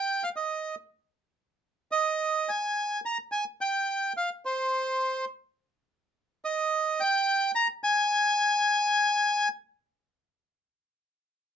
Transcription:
0.00 0.23 G5 medium
0.24 0.29 F5 medium
0.36 0.75 D#5 medium
1.92 2.49 D#5 medium
2.49 3.00 G#5 medium
3.06 3.18 A#5 medium
3.32 3.44 G#5 medium
3.61 4.13 G5 medium
4.17 4.30 F5 medium
4.45 5.25 C5 medium
6.45 7.01 D#5 medium
7.00 7.51 G5 loud
7.55 7.68 A#5 loud
7.84 9.48 G#5 loud

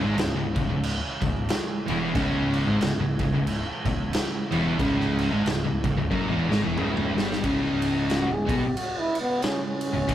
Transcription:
0.00 0.16 G#2 medium
0.00 7.40 C#3 medium
0.00 7.40 E3 medium
0.00 0.16 G#3 loud
0.00 7.40 C#4 medium
0.04 0.16 G#1 loud
0.18 0.35 C#1 medium
0.18 0.35 C#2 medium
0.18 snare loud
0.18 crash medium
0.36 0.55 C#1 medium
0.36 0.55 C#2 medium
0.56 0.68 C#1 medium
0.56 0.70 C#2 medium
0.56 kick medium
0.56 crash medium
0.69 1.00 C#1 medium
0.69 0.96 C#2 medium
0.83 crash loud
1.22 1.48 C#1 medium
1.22 1.44 C#2 medium
1.22 kick medium
1.22 crash medium
1.49 snare loud
1.49 crash medium
1.88 2.14 E1 medium
1.88 2.14 E2 loud
1.88 2.15 E3 loud
1.88 crash medium
2.15 2.64 C#1 loud
2.15 2.66 C#2 loud
2.15 2.67 C#3 loud
2.15 kick loud
2.15 crash medium
2.54 crash medium
2.67 2.80 G#1 loud
2.67 2.81 G#2 loud
2.67 2.81 G#3 loud
2.81 2.99 C#1 medium
2.81 2.99 C#2 medium
2.81 snare loud
2.81 crash medium
3.00 3.19 C#1 medium
3.00 3.20 C#2 medium
3.19 3.33 C#1 medium
3.19 3.33 C#2 medium
3.19 kick medium
3.19 crash medium
3.34 3.65 C#1 medium
3.34 3.59 C#2 medium
3.47 crash medium
3.85 4.11 C#1 medium
3.85 4.08 C#2 medium
3.85 kick medium
3.85 crash medium
4.13 snare loud
4.13 crash medium
4.52 4.78 E1 medium
4.52 4.78 E2 loud
4.52 4.79 E3 loud
4.52 crash medium
4.78 5.28 C#1 loud
4.78 5.30 C#2 loud
4.78 5.31 C#3 loud
4.78 kick loud
4.78 crash medium
5.00 snare soft
5.19 crash medium
5.32 5.44 G#1 medium
5.32 5.45 G#2 medium
5.32 5.45 G#3 loud
5.45 5.63 C#1 medium
5.45 5.64 C#2 medium
5.45 snare loud
5.45 crash medium
5.65 5.83 C#1 medium
5.65 5.82 C#2 medium
5.84 5.97 C#1 medium
5.84 5.96 C#2 medium
5.84 kick loud
5.84 crash medium
5.97 6.11 C#1 medium
5.97 6.10 C#2 medium
6.10 6.29 F#1 medium
6.10 6.29 F#2 loud
6.10 6.29 F#3 loud
6.10 kick medium
6.30 6.49 E1 loud
6.30 6.49 E2 medium
6.30 6.49 E3 medium
6.50 6.64 G#1 loud
6.50 6.63 G#2 medium
6.50 6.63 G#3 loud
6.50 snare medium
6.64 6.78 E1 loud
6.64 6.77 E2 medium
6.64 6.77 E3 loud
6.77 7.14 C#1 loud
6.77 7.15 C#2 medium
6.77 7.15 C#3 loud
6.77 mid tom medium
6.97 mid tom medium
7.17 7.42 G1 medium
7.17 7.43 G2 loud
7.17 7.44 G3 loud
7.17 snare loud
7.32 snare medium
7.44 8.25 C#1 medium
7.44 8.28 C#2 loud
7.44 10.15 C#3 medium
7.44 8.29 C#3 medium
7.44 10.15 G#3 medium
7.44 10.15 C#4 medium
7.44 kick loud
7.44 ride medium
7.82 ride medium
8.10 8.35 F#4 medium
8.10 snare loud
8.10 ride medium
8.29 8.48 C#1 medium
8.29 8.47 C#2 medium
8.34 8.58 G#4 medium
8.47 8.62 B1 loud
8.47 8.61 B2 medium
8.47 8.61 B3 loud
8.47 kick loud
8.47 ride medium
8.57 8.78 G4 medium
8.77 9.01 F#4 medium
8.77 ride loud
8.99 9.20 E4 loud
9.15 ride medium
9.21 9.45 B3 medium
9.42 9.64 C#4 loud
9.42 snare loud
9.42 ride loud
9.66 10.15 C#4 loud
9.81 ride medium
9.93 10.08 C#1 medium
9.93 10.06 C#2 medium
10.07 10.15 C#1 loud
10.07 10.15 C#2 medium
10.07 10.15 C#3 loud
10.07 kick loud
10.07 ride loud

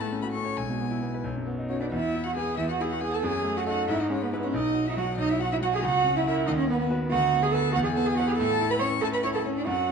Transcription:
0.00 0.55 A2 medium
0.00 0.19 A3 medium
0.00 0.09 A3 medium
0.00 0.22 A5 medium
0.12 0.30 C#4 medium
0.22 0.27 B3 medium
0.22 0.41 F#4 medium
0.22 0.27 B5 medium
0.33 0.44 C#4 medium
0.33 0.53 A4 medium
0.33 0.58 C#6 medium
0.45 0.56 C#5 medium
0.57 1.23 B1 medium
0.57 1.23 G#3 medium
0.57 1.25 G#5 medium
0.70 0.87 B2 medium
0.81 0.98 B3 medium
0.91 1.09 E4 medium
1.02 1.20 B3 medium
1.14 1.25 B4 medium
1.24 1.90 B1 medium
1.36 1.54 F#2 soft
1.47 1.65 B3 medium
1.59 1.77 D#4 medium
1.69 1.80 C#4 medium
1.69 1.88 F#4 medium
1.69 1.80 C#5 medium
1.80 1.85 D4 medium
1.80 1.92 B4 medium
1.80 1.85 D5 medium
1.91 2.56 E2 medium
1.91 2.24 E4 loud
1.91 2.25 E5 medium
2.15 2.50 E4 medium
2.23 2.36 F#4 medium
2.23 2.35 F#5 medium
2.36 2.71 B3 medium
2.36 2.58 G#4 loud
2.36 2.56 G#5 loud
2.57 3.21 E2 medium
2.57 2.69 E4 loud
2.57 2.68 E5 medium
2.69 2.83 F#4 loud
2.69 2.73 F#5 medium
2.80 3.15 E4 medium
2.80 2.94 G#4 loud
2.80 2.85 G#5 medium
2.90 3.02 F#4 loud
2.90 3.02 F#5 medium
3.01 3.23 B3 medium
3.01 3.17 G#4 loud
3.01 3.12 G#5 medium
3.13 3.26 A4 loud
3.13 3.22 A5 medium
3.23 3.87 F#2 medium
3.23 3.59 G#4 loud
3.23 3.55 G#5 loud
3.44 3.80 A3 medium
3.56 3.68 F#4 loud
3.56 3.66 F#5 medium
3.66 3.87 D#4 medium
3.66 3.89 F#4 loud
3.66 3.87 A4 medium
3.66 3.87 F#5 loud
3.88 4.52 G#2 medium
3.88 4.00 E4 loud
3.88 4.01 E5 medium
4.00 4.06 D#4 loud
4.00 4.10 D#5 medium
4.10 4.45 G#3 medium
4.10 4.14 C#4 loud
4.10 4.23 C#5 medium
4.22 4.33 B3 medium
4.22 4.32 B4 medium
4.32 4.47 B3 loud
4.32 4.52 E4 medium
4.32 4.37 B4 medium
4.32 4.53 B4 medium
4.43 4.56 C#4 loud
4.43 4.47 C#5 medium
4.54 5.16 B1 medium
4.54 4.86 D#4 loud
4.54 4.88 D#5 loud
4.74 5.10 F#4 medium
4.87 4.97 E4 loud
4.87 4.99 E5 medium
4.97 5.32 F#3 medium
4.97 5.05 F#4 loud
4.97 5.17 F#5 loud
5.17 5.81 B1 medium
5.17 5.33 D#4 loud
5.17 5.31 D#5 loud
5.29 5.42 E4 loud
5.29 5.42 E5 medium
5.39 5.75 F#4 medium
5.39 5.46 F#4 loud
5.39 5.51 F#5 loud
5.52 5.57 E4 loud
5.52 5.56 E5 loud
5.61 5.83 F#3 medium
5.61 5.73 F#4 loud
5.61 5.67 F#5 loud
5.73 5.79 G#4 loud
5.73 5.86 G#5 medium
5.84 6.45 C#2 medium
5.84 6.15 F#4 loud
5.84 6.18 F#5 loud
6.05 6.39 C#4 medium
6.17 6.21 E4 loud
6.17 6.27 E5 loud
6.27 6.48 E4 loud
6.27 6.46 E4 medium
6.27 6.46 A#4 medium
6.27 6.36 E5 loud
6.47 7.10 D#2 medium
6.47 6.57 D#4 loud
6.47 6.52 D#5 loud
6.57 6.68 C#4 loud
6.57 6.69 C#5 medium
6.69 6.78 B3 loud
6.69 7.04 B3 medium
6.69 6.80 B4 medium
6.79 6.83 B3 loud
6.79 6.91 B4 medium
6.90 7.09 F#4 medium
6.90 7.10 B4 medium
7.10 7.73 D2 loud
7.10 7.44 F#4 loud
7.10 7.41 F#5 loud
7.33 7.67 B3 medium
7.42 7.53 G#4 loud
7.42 7.47 G#5 loud
7.51 7.73 F#4 medium
7.51 7.72 A4 loud
7.51 7.73 B4 medium
7.51 7.74 A5 loud
7.72 8.37 E2 medium
7.72 7.77 F#4 loud
7.72 7.79 F#5 loud
7.84 7.88 G#4 loud
7.84 7.98 G#5 medium
7.93 8.30 B3 medium
7.93 8.07 A4 loud
7.93 8.08 A5 loud
8.06 8.17 G#4 loud
8.06 8.19 G#5 medium
8.16 8.37 E4 medium
8.16 8.27 F#4 loud
8.16 8.37 B4 medium
8.16 8.29 F#5 loud
8.27 8.32 G#4 loud
8.27 8.38 G#5 medium
8.37 9.01 A2 loud
8.37 8.69 A4 loud
8.37 8.72 A5 loud
8.61 8.94 E4 medium
8.70 8.75 B4 loud
8.70 8.83 B5 loud
8.79 9.16 C#4 medium
8.79 8.87 C#5 loud
8.79 9.02 C#6 loud
9.01 9.64 A2 medium
9.01 9.06 A4 loud
9.01 9.08 A5 loud
9.13 9.23 B4 loud
9.13 9.18 B5 loud
9.23 9.58 E4 medium
9.23 9.29 C#5 loud
9.23 9.27 C#6 loud
9.34 9.39 A4 loud
9.34 9.44 A5 medium
9.45 9.59 C#4 loud
9.45 9.67 C#4 medium
9.45 9.50 C#5 medium
9.57 9.68 D4 loud
9.57 9.66 D5 medium
9.66 9.92 F#2 medium
9.66 9.92 F#4 loud
9.66 9.92 F#5 loud

